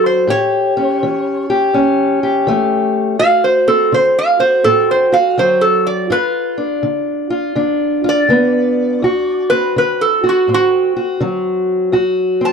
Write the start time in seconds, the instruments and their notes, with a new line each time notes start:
Already playing: steel-string acoustic guitar D3 F#3 C4 F#4
0.06 resonator guitar played with a steel bar C5
0.27 steel-string acoustic guitar A2 G4, resonator guitar played with a steel bar C#5
0.77 steel-string acoustic guitar C#4
1.03 steel-string acoustic guitar E3
1.50 steel-string acoustic guitar G4
1.73 steel-string acoustic guitar E2 C#4
2.23 steel-string acoustic guitar G4
2.47 steel-string acoustic guitar E3 A3
3.19 steel-string acoustic guitar D2 F#4, resonator guitar played with a steel bar F5
3.44 resonator guitar played with a steel bar C5
3.68 steel-string acoustic guitar C4, resonator guitar played with a steel bar A4
3.92 steel-string acoustic guitar D3, resonator guitar played with a steel bar C5
4.18 resonator guitar played with a steel bar F5
4.39 steel-string acoustic guitar F#4, resonator guitar played with a steel bar C5
4.64 steel-string acoustic guitar A2 C4, resonator guitar played with a steel bar A4
4.91 resonator guitar played with a steel bar C5
5.12 steel-string acoustic guitar F#4, resonator guitar played with a steel bar F5
5.38 steel-string acoustic guitar D3 F#3, resonator guitar played with a steel bar C5
5.61 resonator guitar played with a steel bar A4
5.87 resonator guitar played with a steel bar D5
6.10 steel-string acoustic guitar G2 F4, resonator guitar played with a steel bar B4
6.58 steel-string acoustic guitar D4
6.83 steel-string acoustic guitar D3
7.30 steel-string acoustic guitar F4
7.56 steel-string acoustic guitar D3 D4
8.04 steel-string acoustic guitar F4
8.09 resonator guitar played with a steel bar D5
8.29 steel-string acoustic guitar D3 B3
9.02 steel-string acoustic guitar D2 F#4
9.50 steel-string acoustic guitar C4, resonator guitar played with a steel bar B4
9.76 steel-string acoustic guitar D3, resonator guitar played with a steel bar B4
10.01 resonator guitar played with a steel bar A4
10.24 steel-string acoustic guitar F#4
10.29 resonator guitar played with a steel bar F#4
10.48 steel-string acoustic guitar A2 C4
10.54 resonator guitar played with a steel bar F#4
10.96 steel-string acoustic guitar F#4
11.21 steel-string acoustic guitar D3 F#3
11.92 steel-string acoustic guitar D2 F#4
12.41 steel-string acoustic guitar C4
12.45 resonator guitar played with a steel bar A5